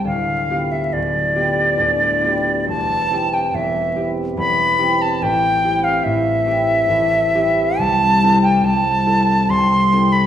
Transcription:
<<
  \new Staff \with { instrumentName = "Flute" } { \time 3/4 \key a \minor \tempo 4 = 71 f''8. e''16 d''2 | a''8. g''16 e''8. r16 b''8. a''16 | g''8. f''16 e''2 | a''8. g''16 a''4 c'''8. b''16 | }
  \new Staff \with { instrumentName = "Harp" } { \time 3/4 \key a \minor <d,, d, g'>8 <b f' g'>8 <d,, d,>8 <b f' g'>8 <d,, d,>8 <b f' g'>8 | <e,, e,>8 <c' e' g'>8 <e,, e,>8 <c' e' g'>8 <e,, e,>8 <c' e' g'>8 | <a,, a,>8 <c' e' g'>8 <a,, a,>8 <c' e' g'>8 <a,, a,>8 <c' e' g'>8 | <c, c>8 <c' e' a'>8 <c, c>8 <c' e' a'>8 <c, c>8 <c' e' a'>8 | }
>>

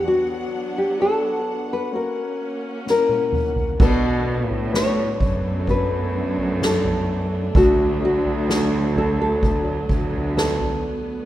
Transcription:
<<
  \new Staff \with { instrumentName = "Nylon-string guitar" } { \time 4/4 \key b \minor \tempo 4 = 64 fis'8. g'16 a'8. b'16 ais'4 ais'4 | b'4 cis''4 b'4 a'4 | fis'8 fis'4 a'16 a'4 r16 a'4 | }
  \new Staff \with { instrumentName = "Grand piano" } { \time 4/4 \key b \minor <b d' fis'>4 <b d' fis'>4 <ais cis' fis'>4 <ais cis' e'>4 | <b d' fis' a'>4 <b d' fis' b'>4 <b d' fis' a'>4 <b d' fis' a'>4 | <a d' fis' a'>4 <a d' fis' a'>4 <a d' fis' a'>4 <a d' fis' b'>4 | }
  \new Staff \with { instrumentName = "Grand piano" } { \clef bass \time 4/4 \key b \minor r1 | b,4. r2 r8 | d4. r2 r8 | }
  \new Staff \with { instrumentName = "String section" } { \time 4/4 \key b \minor << { <fis b>2 r2 | d'1~ | d'1 | } \\ { <d' fis''>2 <ais cis'>2 | <a b>1 | fis2 b2 | } >> }
  \new Staff \with { instrumentName = "Cello section" } { \clef bass \time 4/4 \key b \minor r1 | b,8. a,8. fis,2~ fis,8 | d,2~ d,8 d,4 r8 | }
  \new DrumStaff \with { instrumentName = "Drums" } \drummode { \time 4/4 r4 r4 r4 sn16 tommh16 toml16 tomfh16 | <cymc bd tomfh>8. tomfh16 sn8 <bd tomfh>8 <bd tomfh>8. tomfh16 sn16 tomfh8. | <bd tomfh>8. tomfh16 sn8 tomfh8 <bd tomfh>8 bd16 tomfh16 sn16 tomfh8. | }
>>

